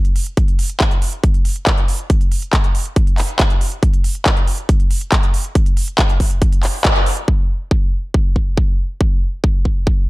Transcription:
0.05 closed hi-hat soft
0.16 open hi-hat loud
0.27 closed hi-hat soft
0.37 kick loud
0.37 closed hi-hat medium
0.48 closed hi-hat soft
0.59 open hi-hat loud
0.70 closed hi-hat soft
0.80 kick loud
0.80 clap loud
0.80 closed hi-hat medium
0.91 closed hi-hat soft
1.02 open hi-hat loud
1.13 closed hi-hat soft
1.24 kick loud
1.24 closed hi-hat medium
1.34 closed hi-hat soft
1.45 open hi-hat loud
1.56 closed hi-hat soft
1.67 kick loud
1.67 clap loud
1.67 closed hi-hat medium
1.78 closed hi-hat soft
1.88 open hi-hat loud
1.99 closed hi-hat soft
2.10 kick loud
2.10 closed hi-hat medium
2.21 closed hi-hat soft
2.32 open hi-hat medium
2.42 closed hi-hat soft
2.53 kick loud
2.53 clap loud
2.53 closed hi-hat medium
2.64 closed hi-hat soft
2.75 open hi-hat medium
2.85 closed hi-hat soft
2.96 kick loud
2.96 closed hi-hat medium
3.07 closed hi-hat soft
3.18 clap medium
3.18 open hi-hat loud
3.29 closed hi-hat soft
3.39 kick loud
3.39 clap loud
3.39 closed hi-hat medium
3.50 closed hi-hat soft
3.61 open hi-hat loud
3.72 closed hi-hat soft
3.83 kick loud
3.83 closed hi-hat medium
3.93 closed hi-hat soft
4.04 open hi-hat medium
4.15 closed hi-hat soft
4.26 kick loud
4.26 clap loud
4.26 closed hi-hat medium
4.37 closed hi-hat soft
4.47 open hi-hat medium
4.58 closed hi-hat soft
4.69 kick loud
4.69 closed hi-hat medium
4.80 closed hi-hat soft
4.91 open hi-hat medium
5.01 closed hi-hat soft
5.12 kick loud
5.12 clap loud
5.12 closed hi-hat medium
5.23 closed hi-hat soft
5.34 open hi-hat loud
5.45 closed hi-hat soft
5.55 kick loud
5.55 closed hi-hat medium
5.66 closed hi-hat soft
5.77 open hi-hat medium
5.88 closed hi-hat soft
5.99 kick loud
5.99 clap loud
5.99 closed hi-hat medium
6.09 closed hi-hat soft
6.20 kick medium
6.20 open hi-hat loud
6.31 closed hi-hat soft
6.42 kick loud
6.42 closed hi-hat medium
6.52 closed hi-hat soft
6.63 clap medium
6.63 open hi-hat medium
6.74 open hi-hat medium
6.85 kick loud
6.85 clap loud
6.85 closed hi-hat medium
6.96 closed hi-hat soft
7.06 open hi-hat loud
7.17 closed hi-hat soft
7.28 kick loud
7.71 kick loud
8.14 kick loud
8.36 kick medium
8.57 kick loud
9.01 kick loud
9.44 kick loud
9.65 kick medium
9.87 kick loud

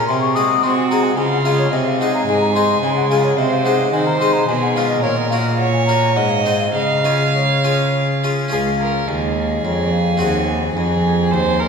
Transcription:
0.00 0.12 A#4 medium
0.07 0.59 C3 soft
0.07 0.63 C3 medium
0.07 0.64 G#4 medium
0.07 0.21 C6 medium
0.21 0.37 C#6 medium
0.35 0.75 G#3 soft
0.35 0.75 F#4 soft
0.35 0.76 G#4 soft
0.35 0.65 D#6 medium
0.63 1.14 C4 soft
0.63 1.17 C4 medium
0.63 1.17 F#4 medium
0.63 0.76 C6 medium
0.77 0.89 G#5 medium
0.90 1.10 G#3 soft
0.90 1.11 F#4 soft
0.90 1.11 G#4 soft
0.90 1.05 A#5 medium
1.04 1.16 F#5 medium
1.16 1.71 C#3 medium
1.16 1.68 C#3 soft
1.16 1.73 F4 medium
1.16 1.22 G#5 medium
1.32 1.38 F#5 medium
1.45 1.65 G#3 soft
1.45 1.65 F4 soft
1.45 1.65 G#4 soft
1.45 1.51 F5 medium
1.59 1.71 C#5 medium
1.71 2.27 C3 medium
1.71 2.24 C3 soft
1.71 3.38 G#4 medium
1.71 1.77 D#5 medium
1.86 2.01 F5 medium
2.00 2.40 G#3 soft
2.00 2.41 D#4 soft
2.00 2.41 G#4 soft
2.00 2.13 F#5 medium
2.14 2.27 A#5 medium
2.27 2.81 G#2 medium
2.27 2.79 G#2 soft
2.27 2.40 G#5 medium
2.41 2.54 A#5 medium
2.55 2.75 G#3 soft
2.55 2.76 D#4 soft
2.55 2.76 G#4 soft
2.55 2.81 C6 medium
2.81 3.36 C#3 medium
2.81 3.34 C#3 soft
2.81 2.95 G#5 medium
2.96 3.09 F#5 medium
3.09 3.30 G#3 soft
3.09 3.31 F4 soft
3.09 3.31 G#4 soft
3.09 3.26 F5 medium
3.24 3.39 C#5 medium
3.37 3.92 C3 medium
3.37 3.89 C3 soft
3.37 3.92 C5 medium
3.37 3.51 D#5 medium
3.51 3.66 F5 medium
3.64 4.05 G#3 soft
3.64 4.06 D#4 soft
3.64 4.06 G#4 soft
3.64 3.91 F#5 medium
3.92 4.47 D#3 medium
3.92 4.45 D#3 soft
3.92 4.47 C5 medium
3.92 4.08 G#5 medium
4.07 4.19 A#5 medium
4.20 4.41 G#3 soft
4.20 4.41 D#4 soft
4.20 4.42 G#4 soft
4.20 4.34 C6 medium
4.33 4.47 A#5 medium
4.47 5.03 B2 medium
4.47 5.00 B2 medium
4.47 5.03 G#4 medium
4.47 4.53 G#5 medium
4.62 4.77 F#5 medium
4.75 4.96 G#3 soft
4.75 4.97 C#4 soft
4.75 4.97 F4 soft
4.75 4.88 F5 medium
4.89 5.04 D#5 medium
5.03 6.18 A#2 medium
5.03 6.13 A#2 soft
5.03 5.58 A#4 medium
5.03 5.18 C#5 medium
5.17 5.29 D#5 medium
5.30 5.73 A#3 soft
5.30 5.73 C#4 soft
5.30 5.73 F#4 soft
5.30 5.36 F5 medium
5.58 6.18 C#5 medium
5.58 5.72 F#5 medium
5.73 5.86 G#5 medium
5.86 6.09 A#3 soft
5.86 6.09 C#4 soft
5.86 6.09 F#4 soft
5.86 6.15 A#5 medium
6.15 6.71 G#2 medium
6.15 6.75 G#2 medium
6.15 6.75 D#5 medium
6.15 6.32 F#5 medium
6.30 6.45 F5 medium
6.45 6.67 C4 soft
6.45 6.67 D#4 soft
6.45 6.67 G#4 soft
6.45 6.60 D#5 medium
6.60 6.66 F5 medium
6.74 8.27 C#3 soft
6.74 8.29 C#3 medium
6.74 7.12 D#5 medium
6.74 8.21 F5 medium
7.04 7.47 C#4 soft
7.04 7.47 F4 soft
7.04 7.47 G#4 soft
7.34 8.19 C#5 medium
7.64 8.07 C#4 soft
7.64 8.07 F4 soft
7.64 8.07 G#4 soft
8.24 8.44 C#4 soft
8.24 8.45 F4 soft
8.24 8.45 G#4 soft
8.48 9.05 C#2 medium
8.48 10.15 C#4 soft
8.48 10.16 F4 soft
8.48 10.16 G#4 soft
8.48 9.09 F5 medium
8.53 9.05 C#2 soft
8.53 8.61 G#4 medium
8.81 9.09 A#4 medium
9.07 9.61 D#2 medium
9.07 9.64 D#2 medium
9.07 10.75 G#4 medium
9.07 9.65 D#5 medium
9.64 10.17 F2 medium
9.64 10.20 F2 medium
9.64 9.93 C#5 medium
9.92 10.21 F5 medium
10.17 11.68 C4 soft
10.17 11.68 F#4 soft
10.17 11.68 G#4 soft
10.17 10.50 F#5 medium
10.21 10.76 D#2 medium
10.21 10.73 D#2 medium
10.49 10.74 G#5 medium
10.75 11.34 F2 medium
10.75 11.29 F2 medium
10.75 11.33 G#4 medium
10.75 11.68 G#5 medium
11.31 11.68 D#2 medium
11.31 11.61 C5 medium
11.59 11.68 A#4 medium

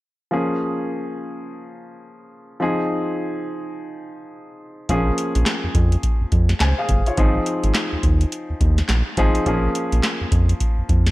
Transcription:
0.31 2.56 F3 medium
0.31 2.56 A#3 medium
0.31 2.57 C#4 medium
0.31 2.57 G#4 medium
2.60 4.85 F3 medium
2.60 4.85 C4 medium
2.60 4.86 D#4 medium
2.60 4.86 G#4 medium
4.89 5.11 A#1 loud
4.89 5.95 F3 medium
4.89 5.96 A#3 medium
4.89 5.96 C#4 medium
4.89 5.96 G#4 medium
4.89 kick loud
4.89 closed hi-hat medium
5.18 closed hi-hat medium
5.35 5.44 A#1 medium
5.35 closed hi-hat medium
5.46 snare loud
5.46 clap loud
5.46 closed hi-hat medium
5.64 5.68 F2 soft
5.75 5.96 F2 medium
5.75 kick medium
5.75 closed hi-hat medium
5.92 closed hi-hat medium
6.03 kick medium
6.03 closed hi-hat medium
6.21 6.25 F2 soft
6.32 6.54 F2 medium
6.32 kick medium
6.32 closed hi-hat medium
6.49 snare medium
6.49 closed hi-hat medium
6.60 6.74 C#2 medium
6.60 6.78 C5 medium
6.60 6.77 G#5 medium
6.60 snare loud
6.60 clap medium
6.60 closed hi-hat medium
6.79 7.06 G#4 medium
6.79 7.05 F5 medium
6.89 7.02 G1 loud
6.89 kick medium
6.89 closed hi-hat medium
7.06 7.34 F4 medium
7.06 7.34 C#5 medium
7.06 closed hi-hat medium
7.17 7.39 G#1 loud
7.17 8.24 F3 medium
7.17 8.24 C4 medium
7.17 8.24 D#4 medium
7.17 8.24 G#4 medium
7.17 kick loud
7.17 closed hi-hat medium
7.46 closed hi-hat medium
7.64 7.72 G#1 loud
7.64 closed hi-hat medium
7.75 snare loud
7.75 clap loud
7.75 closed hi-hat medium
7.92 7.97 D#2 medium
8.03 8.25 D#2 medium
8.03 kick medium
8.03 closed hi-hat medium
8.21 closed hi-hat medium
8.32 closed hi-hat medium
8.50 8.54 D#2 soft
8.61 8.82 D#2 medium
8.61 kick medium
8.61 closed hi-hat medium
8.78 snare medium
8.78 closed hi-hat medium
8.89 9.02 A#1 medium
8.89 snare loud
8.89 clap medium
8.89 closed hi-hat medium
9.17 9.31 G#1 medium
9.17 9.44 F3 medium
9.17 9.44 C4 medium
9.17 9.45 D#4 medium
9.17 9.45 G#4 loud
9.17 kick medium
9.17 closed hi-hat medium
9.35 closed hi-hat medium
9.46 9.68 A#1 loud
9.46 10.52 F3 medium
9.46 10.53 A#3 medium
9.46 10.53 C#4 medium
9.46 10.53 G#4 medium
9.46 kick loud
9.46 closed hi-hat medium
9.75 closed hi-hat medium
9.92 10.01 A#1 medium
9.92 closed hi-hat medium
10.03 snare loud
10.03 clap loud
10.03 closed hi-hat medium
10.21 10.25 F2 soft
10.32 10.54 F2 medium
10.32 kick medium
10.32 closed hi-hat medium
10.49 closed hi-hat medium
10.60 kick medium
10.60 closed hi-hat medium
10.78 10.83 F2 medium
10.89 11.11 F2 medium
10.89 kick medium
10.89 closed hi-hat medium
11.07 snare medium
11.07 closed hi-hat medium

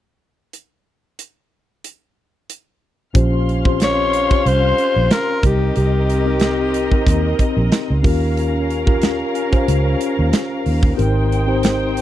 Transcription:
0.53 closed hi-hat soft
1.19 closed hi-hat medium
1.84 closed hi-hat medium
2.50 closed hi-hat medium
3.14 4.26 A#1 medium
3.14 3.49 C#4 medium
3.14 5.41 C#4 medium
3.14 3.49 F4 medium
3.14 3.50 G4 medium
3.14 3.50 C5 medium
3.14 5.41 F5 medium
3.14 5.40 C6 medium
3.14 kick loud
3.14 closed hi-hat medium
3.49 closed hi-hat soft
3.65 3.71 C4 medium
3.65 4.10 F4 medium
3.65 4.11 G4 medium
3.65 4.11 C5 medium
3.65 kick medium
3.71 4.13 C#4 medium
3.80 4.50 C#5 loud
3.80 snare medium
3.80 closed hi-hat medium
4.13 closed hi-hat medium
4.29 5.21 C#4 medium
4.29 5.22 F4 medium
4.29 5.22 G4 medium
4.29 5.22 C5 medium
4.29 kick medium
4.29 closed hi-hat soft
4.46 4.71 C2 medium
4.46 5.14 C5 loud
4.46 closed hi-hat medium
4.78 closed hi-hat medium
4.96 5.08 A#1 medium
5.11 5.44 A#4 medium
5.11 snare loud
5.11 closed hi-hat medium
5.43 5.69 C2 medium
5.43 6.08 C4 medium
5.43 8.00 C4 medium
5.43 6.08 D#4 medium
5.43 6.09 G4 medium
5.43 5.75 G4 medium
5.43 8.01 A#4 medium
5.43 6.09 A#4 medium
5.43 8.00 D#5 medium
5.43 kick medium
5.43 closed hi-hat medium
5.76 6.88 C2 loud
5.76 7.68 G4 medium
5.76 closed hi-hat medium
6.10 closed hi-hat soft
6.25 6.71 C4 medium
6.25 6.71 D#4 medium
6.25 6.72 G4 medium
6.25 6.72 A#4 medium
6.40 snare medium
6.40 closed hi-hat medium
6.74 closed hi-hat medium
6.92 7.83 C4 medium
6.92 7.84 D#4 medium
6.92 7.84 G4 medium
6.92 7.84 A#4 medium
6.92 kick medium
7.07 7.33 D#2 medium
7.07 kick medium
7.07 closed hi-hat medium
7.39 kick medium
7.39 closed hi-hat medium
7.57 7.69 A#1 medium
7.72 snare loud
7.72 closed hi-hat medium
7.90 8.02 C#2 medium
8.03 9.22 D#2 medium
8.03 8.69 C#4 medium
8.03 10.94 C#4 medium
8.03 8.69 F4 medium
8.03 8.69 G4 medium
8.03 10.94 A#4 medium
8.03 8.70 A#4 medium
8.03 10.94 F5 medium
8.03 kick medium
8.03 open hi-hat medium
8.37 closed hi-hat medium
8.70 closed hi-hat soft
8.86 9.32 C#4 medium
8.86 9.32 F4 medium
8.86 9.32 G4 medium
8.86 9.32 A#4 medium
8.86 kick medium
9.02 snare medium
9.02 closed hi-hat medium
9.35 closed hi-hat medium
9.51 10.44 C#4 medium
9.51 10.44 F4 medium
9.51 10.44 G4 medium
9.51 10.44 C5 medium
9.51 kick medium
9.51 closed hi-hat soft
9.68 9.94 C#2 medium
9.68 closed hi-hat medium
10.01 closed hi-hat medium
10.19 10.30 D#2 medium
10.33 snare medium
10.33 closed hi-hat medium
10.66 10.92 D#2 medium
10.66 open hi-hat medium
10.83 kick medium
10.96 12.02 G#1 medium
10.96 11.32 C4 medium
10.96 11.32 D#4 medium
10.96 12.02 D#4 medium
10.96 11.33 G4 medium
10.96 11.33 A#4 medium
10.96 12.02 C5 medium
10.96 12.02 G5 medium
10.96 closed hi-hat medium
11.32 closed hi-hat soft
11.47 11.93 C4 medium
11.47 11.93 D#4 medium
11.47 11.93 G4 medium
11.47 11.94 C5 medium
11.63 snare medium
11.63 closed hi-hat medium
11.97 closed hi-hat medium

